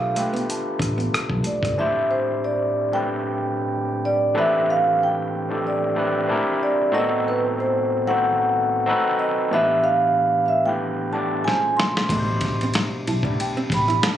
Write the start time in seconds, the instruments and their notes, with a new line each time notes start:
Already playing: fingered electric bass B1, tine electric piano A3 D4 F4 G4 A4 B4, vibraphone F5
0.15 tine electric piano A3 D4 F4 G4 B4, hollow-body jazz guitar A3, vibraphone G5, closed hi-hat
0.33 hollow-body jazz guitar B3, closed hi-hat
0.49 vibraphone A5, muted hollow-body jazz guitar stroke, closed hi-hat
0.79 fingered electric bass A1, hollow-body jazz guitar D4, kick, cross-stick, closed hi-hat
0.98 hollow-body jazz guitar B3, closed hi-hat
1.14 cross-stick, closed hi-hat
1.30 fingered electric bass B1, kick
1.44 hollow-body jazz guitar A3, vibraphone D5, closed hi-hat
1.63 fingered electric bass G1, kick, cross-stick, closed hi-hat
1.77 tine electric piano A2 C4 D4 E4 G4 C5, vibraphone E5
2.11 vibraphone C5
2.44 vibraphone D5
2.92 tine electric piano A2 C4 D4 E4 G4 B4, vibraphone G5
4.05 vibraphone D5
4.34 tine electric piano A2 E3 C4 D4 G4 B4, vibraphone E5
4.70 vibraphone F5
5.03 vibraphone G5
5.49 tine electric piano A2 C4 D4 E4 G4 A4
5.67 vibraphone D5
5.95 tine electric piano A2 C4 D4 E4 G4 B4
6.27 tine electric piano C4 D4 E4 G4 A#4
6.63 vibraphone D5
6.91 tine electric piano A2 B3 C4 D#4 F#4 A4, vibraphone D#5
7.28 vibraphone B4
7.60 vibraphone C5
8.07 tine electric piano A2 C4 D#4 F#4 A4 B4, vibraphone F#5
8.17 tine electric piano C5
8.86 tine electric piano C4 D#4 F#4 A4 B4
9.19 vibraphone D#5
9.50 tine electric piano A2 E3 B3 D4 G4 B4, vibraphone E5
9.84 vibraphone F5
10.46 vibraphone E5 F5
10.65 tine electric piano A2 B3 D4 E4 G4 B4, vibraphone G5
11.12 tine electric piano A2 B3 D4 E4 G4 D5, vibraphone A5
11.44 tine electric piano A#2 C#4 D#4 F4 G#4 C5, vibraphone G#5, snare
11.77 vibraphone C6, snare
11.97 snare
12.09 fingered electric bass A1, tine electric piano B2 D4 E4 G4 B4, hollow-body jazz guitar A3, kick, ride
12.20 tine electric piano C5
12.41 muted hollow-body jazz guitar stroke, kick, snare, ride
12.61 hollow-body jazz guitar C4, ride
12.74 muted hollow-body jazz guitar stroke, snare, ride
13.07 fingered electric bass B1, hollow-body jazz guitar E4, vibraphone A5, ride
13.23 fingered electric bass A2, tine electric piano B3 D4 E4 G4 D5, hollow-body jazz guitar D4, kick
13.40 vibraphone G5, ride
13.57 hollow-body jazz guitar C4
13.70 fingered electric bass A1, vibraphone B5, muted hollow-body jazz guitar stroke, kick, snare, ride
13.88 hollow-body jazz guitar E4, ride
14.03 vibraphone A5, snare, ride